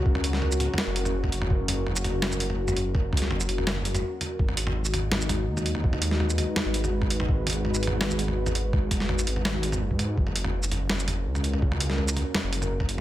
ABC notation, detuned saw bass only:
X:1
M:4/4
L:1/16
Q:1/4=166
K:F#mix
V:1 name="Detuned saw bass" clef=bass
C,,6- C,, z2 F,,,6- F,,, | F,,,3 F,,,12- F,,,- | F,,,2 C,,2 F,,,2 F,,,6 z4 | G,,,12 D,,4- |
D,,6- D,, z2 G,,,6- G,,, | G,,,3 G,,,12- G,,,- | G,,,2 F,,,2 G,,,2 G,,,6 F,,, G,,3 | F,,,12 C,,4- |
C,,6- C,, z2 F,,,6- F,,, |]